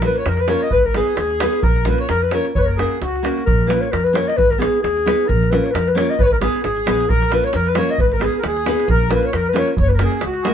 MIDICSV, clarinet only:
0, 0, Header, 1, 2, 480
1, 0, Start_track
1, 0, Tempo, 457666
1, 751, Time_signature, 2, 2, 24, 8
1, 5069, Tempo, 449775
1, 11158, End_track
2, 0, Start_track
2, 0, Title_t, "Clarinet"
2, 0, Program_c, 0, 71
2, 53, Note_on_c, 0, 71, 79
2, 184, Note_on_c, 0, 73, 79
2, 200, Note_off_c, 0, 71, 0
2, 300, Note_on_c, 0, 70, 98
2, 315, Note_off_c, 0, 73, 0
2, 429, Note_on_c, 0, 71, 87
2, 444, Note_off_c, 0, 70, 0
2, 511, Note_on_c, 0, 73, 83
2, 527, Note_off_c, 0, 71, 0
2, 656, Note_on_c, 0, 75, 81
2, 671, Note_off_c, 0, 73, 0
2, 757, Note_off_c, 0, 75, 0
2, 762, Note_on_c, 0, 71, 111
2, 898, Note_on_c, 0, 70, 89
2, 914, Note_off_c, 0, 71, 0
2, 1018, Note_on_c, 0, 68, 73
2, 1034, Note_off_c, 0, 70, 0
2, 1233, Note_off_c, 0, 68, 0
2, 1239, Note_on_c, 0, 68, 99
2, 1725, Note_on_c, 0, 70, 100
2, 1741, Note_off_c, 0, 68, 0
2, 1960, Note_on_c, 0, 71, 83
2, 1975, Note_off_c, 0, 70, 0
2, 2092, Note_off_c, 0, 71, 0
2, 2103, Note_on_c, 0, 73, 74
2, 2192, Note_off_c, 0, 73, 0
2, 2198, Note_on_c, 0, 70, 105
2, 2333, Note_on_c, 0, 71, 88
2, 2349, Note_off_c, 0, 70, 0
2, 2441, Note_on_c, 0, 73, 80
2, 2457, Note_off_c, 0, 71, 0
2, 2573, Note_off_c, 0, 73, 0
2, 2675, Note_on_c, 0, 73, 102
2, 2706, Note_on_c, 0, 71, 86
2, 2722, Note_off_c, 0, 73, 0
2, 2728, Note_on_c, 0, 73, 103
2, 2744, Note_off_c, 0, 71, 0
2, 2781, Note_on_c, 0, 70, 76
2, 2797, Note_off_c, 0, 73, 0
2, 2903, Note_on_c, 0, 68, 65
2, 2918, Note_off_c, 0, 70, 0
2, 3150, Note_off_c, 0, 68, 0
2, 3156, Note_on_c, 0, 66, 77
2, 3489, Note_off_c, 0, 66, 0
2, 3623, Note_on_c, 0, 70, 112
2, 3855, Note_on_c, 0, 71, 91
2, 3871, Note_off_c, 0, 70, 0
2, 3994, Note_on_c, 0, 73, 84
2, 4009, Note_off_c, 0, 71, 0
2, 4106, Note_on_c, 0, 70, 114
2, 4122, Note_off_c, 0, 73, 0
2, 4233, Note_on_c, 0, 71, 101
2, 4248, Note_off_c, 0, 70, 0
2, 4361, Note_on_c, 0, 73, 89
2, 4376, Note_off_c, 0, 71, 0
2, 4484, Note_on_c, 0, 75, 99
2, 4500, Note_off_c, 0, 73, 0
2, 4578, Note_on_c, 0, 71, 120
2, 4593, Note_off_c, 0, 75, 0
2, 4724, Note_on_c, 0, 70, 82
2, 4740, Note_off_c, 0, 71, 0
2, 4814, Note_on_c, 0, 68, 87
2, 4830, Note_off_c, 0, 70, 0
2, 5049, Note_off_c, 0, 68, 0
2, 5056, Note_on_c, 0, 68, 107
2, 5545, Note_on_c, 0, 70, 106
2, 5561, Note_off_c, 0, 68, 0
2, 5783, Note_on_c, 0, 71, 88
2, 5799, Note_off_c, 0, 70, 0
2, 5930, Note_on_c, 0, 73, 87
2, 5946, Note_off_c, 0, 71, 0
2, 5995, Note_on_c, 0, 71, 80
2, 6011, Note_off_c, 0, 73, 0
2, 6026, Note_on_c, 0, 70, 106
2, 6042, Note_off_c, 0, 71, 0
2, 6172, Note_on_c, 0, 71, 98
2, 6188, Note_off_c, 0, 70, 0
2, 6272, Note_on_c, 0, 73, 98
2, 6288, Note_off_c, 0, 71, 0
2, 6420, Note_on_c, 0, 75, 94
2, 6436, Note_off_c, 0, 73, 0
2, 6518, Note_on_c, 0, 71, 100
2, 6534, Note_off_c, 0, 75, 0
2, 6542, Note_on_c, 0, 73, 95
2, 6558, Note_off_c, 0, 71, 0
2, 6567, Note_on_c, 0, 71, 117
2, 6583, Note_off_c, 0, 73, 0
2, 6644, Note_off_c, 0, 71, 0
2, 6665, Note_on_c, 0, 70, 82
2, 6710, Note_off_c, 0, 70, 0
2, 6749, Note_on_c, 0, 68, 83
2, 6979, Note_off_c, 0, 68, 0
2, 7000, Note_on_c, 0, 68, 105
2, 7483, Note_on_c, 0, 70, 118
2, 7499, Note_off_c, 0, 68, 0
2, 7742, Note_on_c, 0, 71, 84
2, 7758, Note_off_c, 0, 70, 0
2, 7854, Note_on_c, 0, 73, 82
2, 7870, Note_off_c, 0, 71, 0
2, 7978, Note_on_c, 0, 70, 91
2, 7994, Note_off_c, 0, 73, 0
2, 8117, Note_on_c, 0, 71, 92
2, 8133, Note_off_c, 0, 70, 0
2, 8220, Note_on_c, 0, 73, 97
2, 8236, Note_off_c, 0, 71, 0
2, 8348, Note_on_c, 0, 75, 79
2, 8364, Note_off_c, 0, 73, 0
2, 8450, Note_on_c, 0, 71, 112
2, 8466, Note_off_c, 0, 75, 0
2, 8547, Note_off_c, 0, 71, 0
2, 8547, Note_on_c, 0, 71, 62
2, 8582, Note_on_c, 0, 70, 96
2, 8598, Note_off_c, 0, 71, 0
2, 8704, Note_on_c, 0, 68, 82
2, 8720, Note_off_c, 0, 70, 0
2, 8847, Note_off_c, 0, 68, 0
2, 8853, Note_on_c, 0, 70, 60
2, 8950, Note_on_c, 0, 68, 96
2, 8966, Note_off_c, 0, 70, 0
2, 9399, Note_off_c, 0, 68, 0
2, 9406, Note_on_c, 0, 70, 109
2, 9625, Note_off_c, 0, 70, 0
2, 9640, Note_on_c, 0, 71, 85
2, 9782, Note_on_c, 0, 73, 82
2, 9798, Note_off_c, 0, 71, 0
2, 9881, Note_on_c, 0, 70, 101
2, 9897, Note_off_c, 0, 73, 0
2, 10035, Note_on_c, 0, 71, 92
2, 10051, Note_off_c, 0, 70, 0
2, 10138, Note_on_c, 0, 73, 83
2, 10154, Note_off_c, 0, 71, 0
2, 10261, Note_off_c, 0, 73, 0
2, 10388, Note_on_c, 0, 73, 99
2, 10462, Note_on_c, 0, 71, 58
2, 10478, Note_off_c, 0, 73, 0
2, 10528, Note_on_c, 0, 70, 76
2, 10544, Note_off_c, 0, 71, 0
2, 10629, Note_on_c, 0, 68, 68
2, 10645, Note_off_c, 0, 70, 0
2, 10867, Note_on_c, 0, 66, 81
2, 10883, Note_off_c, 0, 68, 0
2, 11071, Note_off_c, 0, 66, 0
2, 11078, Note_on_c, 0, 56, 87
2, 11136, Note_off_c, 0, 56, 0
2, 11158, End_track
0, 0, End_of_file